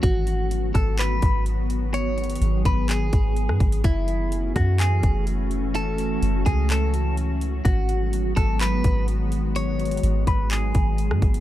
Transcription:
<<
  \new Staff \with { instrumentName = "Clean electric guitar" } { \time 4/4 \key gis \phrygian \tempo 4 = 126 fis'4. a'8 b'4 r4 | cis''4. b'8 gis'2 | e'4. fis'8 gis'4 r4 | a'4. gis'8 a'4 r4 |
fis'4. a'8 b'4 r4 | cis''4. b'8 gis'2 | }
  \new Staff \with { instrumentName = "Ambient pad" } { \time 4/4 \key gis \phrygian << { fis'1 | gis'1 | fis'1~ | fis'1~ |
fis'1~ | fis'1 | } \\ { <dis fis b>1~ | <dis fis b>1 | <e a cis'>1~ | <e a cis'>1 |
<dis fis gis b>1~ | <dis fis gis b>1 | } >> }
  \new Staff \with { instrumentName = "808-style bass" } { \clef bass \time 4/4 \key gis \phrygian gis,,4. gis,,4 gis,,4.~ | gis,,4 gis,,8 gis,,4 gis,,8. gis,16 gis,,8 | fis,,4. fis,4 fis,,4.~ | fis,,4 fis,,8 cis,2~ cis,8 |
gis,,4. gis,,4 gis,,4.~ | gis,,4 gis,,8 gis,,4 gis,,8. gis,16 gis,,8 | }
  \new DrumStaff \with { instrumentName = "Drums" } \drummode { \time 4/4 <hh bd>8 hh8 hh8 <hh bd ss>8 <hc hh>8 <hh bd>8 hh8 hh8 | hh8 hh32 hh32 hh32 hh32 hh8 <hh bd>8 <hc hh>8 <hh bd>8 hh16 ss16 <hh bd>16 hh16 | <hh bd>8 hh8 hh8 <hh bd ss>8 <hc hh>8 <hh bd>8 hh8 hh8 | hh8 hh8 hh8 <hh bd>8 <hc hh>8 hh8 hh8 hh8 |
<hh bd>8 hh8 hh8 <hh bd ss>8 <hc hh>8 <hh bd>8 hh8 hh8 | hh8 hh32 hh32 hh32 hh32 hh8 <hh bd>8 <hc hh>8 <hh bd>8 hh16 ss16 <hh bd>16 hh16 | }
>>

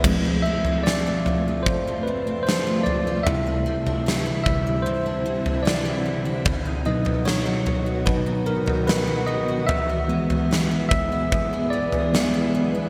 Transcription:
<<
  \new Staff \with { instrumentName = "Tine electric piano" } { \time 4/4 \key f \lydian \tempo 4 = 75 r8 e''8 d''4 c''8 b'8 c''8 d''8 | e''4. e''8 c''4 d''8. r16 | r8 dis''8 cis''4 b'8 bes'8 b'8 dis''8 | e''4. e''4 d''4 r8 | }
  \new Staff \with { instrumentName = "Tine electric piano" } { \clef bass \time 4/4 \key f \lydian <f a c'>4. r2 r8 | <c g e'>8 r4 <c g e'>8 r2 | r8 <b, fis dis'>4. <b, fis dis'>8 r4. | r8 <e gis b>4. r4 <e gis b>8 r8 | }
  \new Staff \with { instrumentName = "Ambient pad" } { \time 4/4 \key f \lydian <c a f'>1 | <d c' e'>1 | <dis b fis'>1 | <e b gis'>1 | }
  \new Staff \with { instrumentName = "Steel-string acoustic guitar" } { \time 4/4 \key f \lydian f,16 c'16 a16 c'16 f16 f'16 a16 f'16 f,16 c'16 a16 c'16 f16 f'16 a16 f'16 | c16 d'16 g16 d'16 e16 e'16 g16 e'16 c16 d'16 g16 d'16 e16 e'16 g16 e'16 | b,16 dis'16 b16 dis'16 fis16 fis'16 b16 fis'16 b,16 dis'16 b16 dis'16 fis16 fis'16 b16 fis'16 | e,16 b16 gis16 b16 e16 e'16 gis16 e'16 e,16 b16 gis16 b16 e16 e'16 gis16 e'16 | }
  \new DrumStaff \with { instrumentName = "Drums" } \drummode { \time 4/4 <cymc bd tomfh>8. tomfh16 sn8 tomfh8 bd4 sn8 tomfh8 | tomfh8. tomfh16 sn8 <bd tomfh>8 r8. tomfh16 sn4 | <bd tomfh>8. tomfh16 sn8 tomfh8 bd8. tomfh16 sn4 | tomfh8. tomfh16 sn8 <bd tomfh>8 bd8. tomfh16 sn4 | }
>>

